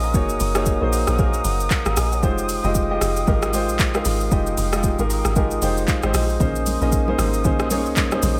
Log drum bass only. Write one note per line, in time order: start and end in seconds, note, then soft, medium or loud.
0.00 0.16 A#1 medium
0.14 0.38 F#1 loud
0.41 0.78 F#1 loud
0.82 1.06 A#1 medium
1.08 1.42 A#1 medium
1.45 1.69 F#1 medium
1.86 1.96 G#1 medium
1.97 2.25 A#1 medium
2.23 2.61 F1 loud
2.64 2.98 F1 loud
3.01 3.25 F1 medium
3.28 3.70 G#1 loud
3.69 4.03 A#1 loud
4.06 4.30 G#1 medium
4.32 4.56 F1 loud
4.58 4.96 F1 loud
4.99 5.23 G#1 loud
5.25 5.59 G#1 medium
5.62 5.86 F1 medium
6.03 6.13 G#1 medium
6.14 6.38 A#1 medium
6.40 6.78 A#1 loud
6.82 7.16 A#1 loud
7.18 7.46 G#1 loud
7.45 7.87 A#1 loud
7.86 8.20 C2 medium
8.23 8.40 A#1 medium